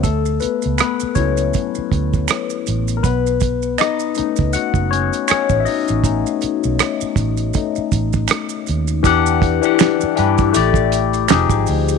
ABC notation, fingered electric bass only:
X:1
M:4/4
L:1/16
Q:"Swing 16ths" 1/4=80
K:Bm
V:1 name="Fingered electric bass" clef=bass
D,,2 z C,, z2 C,,2 z2 D,,2 z2 A,,,2 | B,,,4 z3 C,, z F,,,2 z2 A,,, z A,,,- | A,,, z2 B,,, z2 A,,,2 z2 A,,,2 z2 ^D,,2 | [K:Am] E,,3 z3 G,,2 A,,,4 F,,, _A,,, D,,2 |]